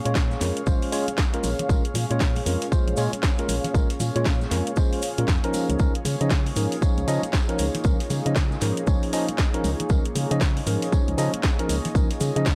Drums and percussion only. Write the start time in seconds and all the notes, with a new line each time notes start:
0.05 closed hi-hat, cabasa
0.15 kick, snare, tambourine, cabasa
0.31 snare, high conga, cabasa
0.41 snare, open hi-hat, tambourine, low conga, cabasa
0.57 closed hi-hat, cabasa
0.66 kick, tambourine, high conga, cabasa
0.82 open hi-hat, cabasa
0.92 open hi-hat, tambourine, cabasa
1.08 closed hi-hat, high conga, cabasa
1.18 kick, snare, tambourine, cabasa
1.34 closed hi-hat, cabasa
1.43 open hi-hat, tambourine, high conga, cabasa
1.59 closed hi-hat, low conga, cabasa
1.69 kick, tambourine, cabasa
1.85 closed hi-hat, cabasa
1.94 open hi-hat, tambourine, high conga, low conga, cabasa
2.11 closed hi-hat, cabasa
2.20 kick, snare, tambourine, cabasa
2.35 open hi-hat, high conga, cabasa
2.46 open hi-hat, tambourine, low conga, cabasa
2.61 closed hi-hat, cabasa
2.72 kick, tambourine, high conga, cabasa
2.88 closed hi-hat, cabasa
2.97 open hi-hat, tambourine, cabasa
3.13 closed hi-hat, high conga, cabasa
3.22 kick, snare, tambourine, cabasa
3.38 closed hi-hat, cabasa
3.49 open hi-hat, tambourine, high conga, cabasa
3.64 closed hi-hat, low conga, cabasa
3.75 kick, tambourine, cabasa
3.90 closed hi-hat, cabasa
4.00 open hi-hat, tambourine, high conga, low conga, cabasa
4.16 closed hi-hat, cabasa
4.25 kick, snare, tambourine, cabasa
4.41 snare, high conga, cabasa
4.51 snare, open hi-hat, tambourine, low conga, cabasa
4.67 closed hi-hat, cabasa
4.76 kick, tambourine, high conga, cabasa
4.93 open hi-hat, cabasa
5.02 open hi-hat, tambourine, cabasa
5.18 closed hi-hat, high conga, cabasa
5.28 kick, snare, tambourine, cabasa
5.44 closed hi-hat, cabasa
5.53 open hi-hat, tambourine, high conga, cabasa
5.69 closed hi-hat, low conga, cabasa
5.79 kick, tambourine, cabasa
5.95 closed hi-hat, cabasa
6.05 open hi-hat, tambourine, high conga, low conga, cabasa
6.21 closed hi-hat, cabasa
6.30 kick, snare, tambourine, cabasa
6.46 open hi-hat, high conga, cabasa
6.56 open hi-hat, tambourine, low conga, cabasa
6.72 closed hi-hat, cabasa
6.81 kick, tambourine, high conga, cabasa
6.97 closed hi-hat, cabasa
7.08 open hi-hat, tambourine, cabasa
7.23 closed hi-hat, high conga, cabasa
7.33 kick, snare, tambourine, cabasa
7.49 closed hi-hat, cabasa
7.58 open hi-hat, tambourine, high conga, cabasa
7.75 closed hi-hat, low conga, cabasa
7.84 kick, tambourine, cabasa
8.00 closed hi-hat, cabasa
8.10 open hi-hat, tambourine, high conga, low conga, cabasa
8.26 closed hi-hat, cabasa
8.35 kick, snare, tambourine, cabasa
8.51 snare, high conga, cabasa
8.61 snare, open hi-hat, tambourine, low conga, cabasa
8.77 closed hi-hat, cabasa
8.87 kick, tambourine, high conga, cabasa
9.03 open hi-hat, cabasa
9.13 open hi-hat, tambourine, cabasa
9.29 closed hi-hat, high conga, cabasa
9.38 kick, snare, tambourine, cabasa
9.54 closed hi-hat, cabasa
9.64 open hi-hat, tambourine, high conga, cabasa
9.80 closed hi-hat, low conga, cabasa
9.89 kick, tambourine, cabasa
10.05 closed hi-hat, cabasa
10.15 open hi-hat, tambourine, high conga, low conga, cabasa
10.31 closed hi-hat, cabasa
10.41 kick, snare, tambourine, cabasa
10.57 open hi-hat, high conga, cabasa
10.67 open hi-hat, tambourine, low conga, cabasa
10.82 closed hi-hat, cabasa
10.92 kick, tambourine, high conga, cabasa
11.08 closed hi-hat, cabasa
11.18 open hi-hat, tambourine, cabasa
11.33 closed hi-hat, high conga, cabasa
11.43 kick, snare, tambourine, cabasa
11.59 closed hi-hat, cabasa
11.69 open hi-hat, tambourine, high conga, cabasa
11.85 closed hi-hat, low conga, cabasa
11.95 kick, tambourine, cabasa
12.10 closed hi-hat, cabasa
12.20 open hi-hat, tambourine, high conga, low conga, cabasa
12.36 closed hi-hat, cabasa
12.46 kick, snare, tambourine, cabasa